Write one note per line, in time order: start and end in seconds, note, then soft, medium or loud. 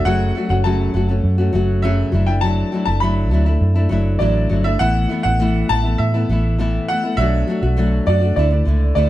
0.05 0.30 F#1 loud
0.05 0.35 F#2 medium
0.05 0.35 C#3 medium
0.05 0.34 F#3 medium
0.05 0.35 A3 medium
0.05 0.36 C#4 medium
0.05 0.36 F#4 medium
0.05 0.49 F#5 medium
0.35 0.50 F#3 medium
0.35 0.50 A3 medium
0.35 0.49 C#4 medium
0.35 0.48 F#4 medium
0.49 0.87 F#1 medium
0.49 0.64 F#3 soft
0.49 0.64 A3 soft
0.49 0.65 C#4 medium
0.49 0.64 F#4 medium
0.49 0.55 F#5 medium
0.64 0.94 F#2 medium
0.64 0.95 C#3 medium
0.64 0.93 F#3 medium
0.64 0.94 A3 medium
0.64 0.95 C#4 medium
0.64 0.96 F#4 medium
0.64 1.06 A5 medium
0.94 1.19 F#1 medium
0.94 1.09 F#3 medium
0.94 1.10 A3 medium
0.94 1.09 C#4 medium
0.94 1.08 F#4 medium
1.09 1.40 F#3 medium
1.09 1.39 A3 medium
1.09 1.38 C#4 medium
1.09 1.37 F#4 medium
1.24 1.48 F#2 loud
1.38 1.51 F#3 medium
1.38 1.53 A3 medium
1.38 1.54 C#4 medium
1.38 1.54 F#4 medium
1.53 2.02 F#1 medium
1.53 1.83 F#3 medium
1.53 1.83 A3 medium
1.53 1.83 C#4 medium
1.53 1.84 F#4 medium
1.82 2.13 F#2 medium
1.82 2.13 C#3 medium
1.82 2.11 F#3 medium
1.82 2.12 A3 medium
1.82 2.13 C#4 medium
1.82 2.14 F#4 medium
1.82 2.29 E5 medium
2.12 2.62 F#1 medium
2.12 2.28 F#3 medium
2.12 2.28 A3 medium
2.12 2.28 D4 medium
2.12 2.26 E4 medium
2.27 2.43 D4 medium
2.27 2.43 E4 medium
2.27 2.43 G5 medium
2.31 2.42 A3 soft
2.41 2.71 F#3 medium
2.41 2.72 A3 medium
2.41 2.73 D4 medium
2.41 2.74 E4 medium
2.41 2.84 A5 loud
2.72 2.87 F#3 medium
2.72 2.88 A3 medium
2.72 2.88 D4 medium
2.72 2.86 E4 medium
2.85 3.31 F#1 loud
2.85 3.03 D4 medium
2.85 3.02 E4 medium
2.85 3.02 A5 medium
2.90 3.02 A3 soft
3.00 3.30 F#3 medium
3.00 3.31 A3 medium
3.00 3.32 D4 medium
3.00 3.33 E4 medium
3.00 3.43 B5 medium
3.31 3.56 D2 medium
3.31 3.47 F#3 medium
3.31 3.47 A3 medium
3.31 3.46 D4 medium
3.31 3.45 E4 medium
3.46 3.78 A3 medium
3.46 3.76 D4 soft
3.46 3.74 E4 medium
3.61 3.86 F#2 loud
3.75 3.89 A3 medium
3.75 3.90 D4 medium
3.75 3.91 E4 medium
3.89 4.16 F#1 medium
3.89 4.19 F#3 medium
3.89 4.20 A3 medium
3.89 4.20 D4 medium
3.89 4.21 E4 medium
4.19 4.45 A1 loud
4.19 4.48 F#3 medium
4.19 4.50 A3 medium
4.19 4.51 D4 medium
4.19 4.51 E4 medium
4.19 4.66 D5 medium
4.49 4.75 G1 medium
4.49 4.65 F#3 medium
4.49 4.66 A3 medium
4.49 4.64 D4 medium
4.49 4.62 E4 medium
4.64 4.79 A3 soft
4.64 4.80 D4 medium
4.64 4.80 E4 medium
4.64 4.79 E5 medium
4.79 5.05 A1 loud
4.79 5.10 A2 medium
4.79 5.08 E3 medium
4.79 5.09 A3 medium
4.79 5.10 B3 medium
4.79 5.11 E4 medium
4.79 5.22 F#5 loud
5.09 5.24 E3 medium
5.09 5.25 A3 medium
5.09 5.24 B3 medium
5.09 5.22 E4 medium
5.23 5.62 A1 medium
5.23 5.39 A3 soft
5.23 5.40 B3 medium
5.23 5.39 E4 medium
5.23 5.70 F#5 loud
5.39 5.69 A2 medium
5.39 5.68 E3 medium
5.39 5.69 A3 medium
5.39 5.70 B3 medium
5.39 5.70 E4 medium
5.69 5.94 A1 loud
5.69 5.84 E3 medium
5.69 5.85 A3 medium
5.69 5.84 B3 medium
5.69 5.83 E4 medium
5.69 6.00 A5 loud
5.84 6.15 A3 soft
5.84 6.15 B3 medium
5.84 6.13 E4 medium
5.98 6.24 A2 loud
5.98 6.54 E5 medium
6.14 6.29 A3 soft
6.14 6.30 B3 medium
6.14 6.29 E4 medium
6.29 6.78 A1 loud
6.29 6.58 E3 medium
6.29 6.58 A3 medium
6.29 6.59 B3 medium
6.29 6.60 E4 medium
6.59 6.88 A2 medium
6.59 6.87 E3 medium
6.59 6.88 A3 medium
6.59 6.89 B3 medium
6.59 6.89 E4 medium
6.88 7.03 E3 medium
6.88 7.04 A3 medium
6.88 7.04 B3 medium
6.88 7.02 E4 medium
6.88 7.19 F#5 loud
7.03 7.19 A3 medium
7.03 7.19 B3 medium
7.03 7.18 E4 medium
7.17 7.42 B1 loud
7.17 7.48 B2 medium
7.17 7.46 F#3 medium
7.17 7.48 A3 medium
7.17 7.49 D4 medium
7.17 8.09 E5 loud
7.21 7.49 F#4 medium
7.47 7.62 F#3 medium
7.47 7.63 A3 medium
7.47 7.63 D4 medium
7.47 7.61 F#4 medium
7.63 7.99 B1 loud
7.63 7.77 A3 soft
7.63 7.77 D4 soft
7.63 7.77 F#4 medium
7.77 8.07 B2 medium
7.77 8.05 F#3 medium
7.77 8.06 A3 medium
7.77 8.07 D4 medium
7.77 8.08 F#4 medium
8.06 8.31 F#2 loud
8.06 8.21 F#3 medium
8.06 8.22 A3 medium
8.06 8.22 D4 medium
8.06 8.20 F#4 medium
8.06 8.35 D5 medium
8.21 8.36 A3 soft
8.21 8.37 D4 medium
8.21 8.36 F#4 medium
8.36 8.61 D2 loud
8.36 8.51 D3 medium
8.36 8.52 A3 medium
8.36 8.51 D4 medium
8.36 8.49 E4 medium
8.36 8.94 D5 medium
8.51 8.66 A3 medium
8.51 8.66 D4 medium
8.51 8.66 E4 medium
8.65 8.91 C#2 medium
8.65 8.95 D3 medium
8.65 8.95 A3 medium
8.65 8.96 D4 medium
8.65 8.97 E4 medium
8.95 9.10 D2 medium
8.95 9.10 D3 medium
8.95 9.10 A3 medium
8.95 9.10 D4 medium
8.95 9.10 E4 medium
8.95 9.10 D5 medium